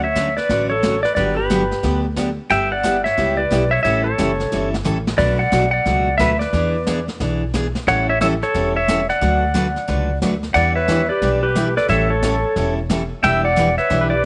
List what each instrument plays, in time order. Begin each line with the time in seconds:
Already playing: upright bass D2
0.04 pedal steel guitar C#5 E5
0.15 steel-string acoustic guitar D3 F#3 A3 C#4 F#4, kick, snare, hi-hat pedal
0.37 pedal steel guitar B4 D5, snare
0.49 upright bass A1, steel-string acoustic guitar D3 F#3 A3 C#4 F#4, brush sweep, kick, snare
0.70 pedal steel guitar A4 C#5
0.83 steel-string acoustic guitar D3 F#3 A3 C#4 F#4, kick, snare, hi-hat pedal
1.03 pedal steel guitar B4 D5, snare
1.15 upright bass G1, steel-string acoustic guitar D3 F#3 B3 D4 G4, pedal steel guitar B4 D5, brush sweep, kick, snare
1.37 pedal steel guitar G4 B4
1.50 steel-string acoustic guitar D3 F#3 B3 D4 G4, kick, snare, hi-hat pedal
1.71 snare
1.83 upright bass D2, steel-string acoustic guitar D3 F#3 B3 D4 G4, brush sweep, kick, snare
2.16 steel-string acoustic guitar D3 F#3 B3 D4 G4, kick, snare, hi-hat pedal
2.50 upright bass G1, steel-string acoustic guitar G3 B3 E4 G4, pedal steel guitar E5 G5, brush sweep, kick, snare
2.72 pedal steel guitar D5 F#5
2.83 steel-string acoustic guitar G3 B3 E4 G4, kick, snare, hi-hat pedal
3.04 pedal steel guitar C#5 E5, snare
3.17 upright bass C#2, steel-string acoustic guitar G3 B3 E4 G4, brush sweep, kick, snare
3.37 pedal steel guitar B4 D5
3.51 upright bass B1, steel-string acoustic guitar G3 B3 E4 G4, kick, snare, hi-hat pedal
3.71 pedal steel guitar C#5 E5
3.83 upright bass A1, steel-string acoustic guitar E3 G3 C#4 E4 A4, pedal steel guitar C#5 E5, brush sweep, kick, snare
4.04 pedal steel guitar A4 C#5
4.18 upright bass F#1, steel-string acoustic guitar E3 G3 C#4 E4 A4, kick, snare, hi-hat pedal
4.40 snare
4.52 upright bass G1, steel-string acoustic guitar E3 G3 C#4 E4 A4, snare
4.74 snare
4.84 upright bass A1, steel-string acoustic guitar E3 G3 C#4 E4 A4, hi-hat pedal, mid tom
5.07 snare
5.18 upright bass B1, steel-string acoustic guitar B2 F#3 A3 D4 F#4, pedal steel guitar B4 D5, brush sweep, kick, snare, crash
5.39 pedal steel guitar D5 F#5
5.52 upright bass B1, steel-string acoustic guitar B2 F#3 A3 D4 F#4, kick, snare, hi-hat pedal
5.71 pedal steel guitar D5 F#5
5.86 upright bass C#2, steel-string acoustic guitar B2 F#3 A3 D4 F#4, brush sweep, kick, snare
6.18 upright bass D2, steel-string acoustic guitar B2 F#3 A3 D4 F#4, pedal steel guitar B4 E5, kick, snare, hi-hat pedal
6.39 pedal steel guitar B4 D5, snare
6.53 upright bass E2, steel-string acoustic guitar E3 B3 D4 G#4, brush sweep, kick, snare
6.87 steel-string acoustic guitar E3 B3 D4 G#4, kick, snare, hi-hat pedal
7.08 snare
7.20 upright bass B1, steel-string acoustic guitar E3 B3 D4 G#4, brush sweep, kick, snare
7.54 steel-string acoustic guitar E3 B3 D4 G#4, kick, snare, hi-hat pedal
7.75 snare
7.87 upright bass A1, steel-string acoustic guitar E3 G3 C#4 E4 A4, pedal steel guitar C#5 F#5, brush sweep, kick, snare
8.09 pedal steel guitar C#5 E5
8.21 steel-string acoustic guitar E3 G3 C#4 E4 A4, pedal steel guitar C#5 E5, kick, snare, hi-hat pedal
8.42 pedal steel guitar A4 C#5, snare
8.54 upright bass E1, steel-string acoustic guitar E3 G3 C#4 E4 A4, brush sweep, kick, snare
8.76 pedal steel guitar C#5 E5
8.88 steel-string acoustic guitar E3 G3 C#4 E4 A4, kick, snare, hi-hat pedal
9.09 pedal steel guitar D5 F#5, snare
9.21 upright bass D2, steel-string acoustic guitar D3 F#3 A3 D4 F#4 B4, brush sweep, kick, snare
9.54 steel-string acoustic guitar D3 F#3 A3 D4 F#4 B4, kick, snare, hi-hat pedal
9.76 snare
9.88 upright bass C#2, steel-string acoustic guitar D3 F#3 A3 D4 F#4 B4, brush sweep, kick, snare
10.22 upright bass D2, steel-string acoustic guitar D3 F#3 A3 D4 F#4 B4, kick, snare, hi-hat pedal
10.43 snare
10.54 upright bass E2, steel-string acoustic guitar E3 G3 D4 E4 B4, clarinet D5, pedal steel guitar D5 F#5, brush sweep, kick, snare
10.75 clarinet B4, pedal steel guitar C#5 E5
10.88 steel-string acoustic guitar E3 G3 D4 E4 B4, kick, snare, hi-hat pedal
11.09 clarinet G4, pedal steel guitar B4 D5
11.22 upright bass B1, steel-string acoustic guitar E3 G3 D4 E4 B4, brush sweep, kick, snare
11.43 pedal steel guitar G4 B4, clarinet G4
11.55 steel-string acoustic guitar E3 G3 D4 E4 B4, kick, snare, hi-hat pedal
11.76 clarinet A4, pedal steel guitar B4 D5, snare
11.88 upright bass A1, steel-string acoustic guitar E3 G3 C#4 E4 A4, clarinet A4, pedal steel guitar C#5 E5, brush sweep, kick, snare
12.10 pedal steel guitar A4 C#5, clarinet A4
12.22 steel-string acoustic guitar E3 G3 C#4 E4 A4, kick, snare, hi-hat pedal
12.56 upright bass E1, steel-string acoustic guitar E3 G3 C#4 E4 A4, brush sweep, kick, snare
12.90 steel-string acoustic guitar E3 G3 C#4 E4 A4, kick, snare, hi-hat pedal
13.23 upright bass E1, steel-string acoustic guitar E3 G3 D4 E4 B4, clarinet E5, pedal steel guitar E5 G5, brush sweep, kick, snare
13.44 clarinet D5, pedal steel guitar D5 F#5
13.56 steel-string acoustic guitar E3 G3 D4 E4 B4, kick, snare, hi-hat pedal
13.78 clarinet B4, pedal steel guitar C#5 E5, snare
13.90 upright bass B1, steel-string acoustic guitar E3 G3 D4 E4 B4, brush sweep, kick, snare
14.01 clarinet G4, pedal steel guitar B4
14.10 clarinet G4, pedal steel guitar B4 D5